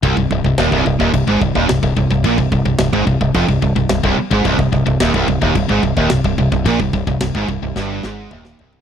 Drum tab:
CC |x---x---x---x---|x---x---x---x---|x---x---x---x---|x---x-----------|
SD |----o-------o---|----o-------o---|----o-------o---|----o---o-o--o--|
T2 |----------------|----------------|----------------|------------o---|
FT |----------------|----------------|----------------|--------------oo|
BD |oooo-ooooooo-ooo|oooo-ooooooo-o-o|oooo-ooooooo-ooo|oooo-oo---------|